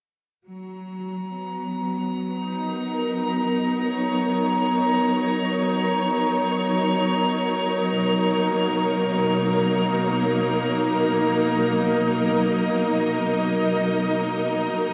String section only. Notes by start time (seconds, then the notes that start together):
0.46 F#3
1.30 B3
2.42 D#4
2.70 A#4
3.87 C#5
7.97 B2
8.33 A#3
11.37 D#5